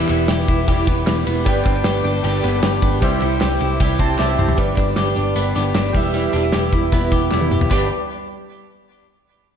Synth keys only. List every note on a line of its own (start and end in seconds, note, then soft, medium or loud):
1.45 2.98 G4 medium
1.45 2.99 B4 medium
1.45 2.99 D5 medium
1.45 3.00 G5 medium
3.01 4.54 G4 medium
3.01 4.55 C5 medium
3.01 4.18 E5 medium
3.01 4.08 G5 medium
4.00 4.09 A5 medium
4.10 4.18 G5 medium
4.20 4.56 E5 medium
4.56 5.91 G4 medium
4.56 5.92 B4 medium
4.56 5.93 D5 medium
5.93 7.66 G4 medium
5.93 7.67 B4 medium
5.97 7.68 E5 medium
7.71 7.89 G4 medium
7.71 7.89 B4 medium
7.71 7.89 D5 medium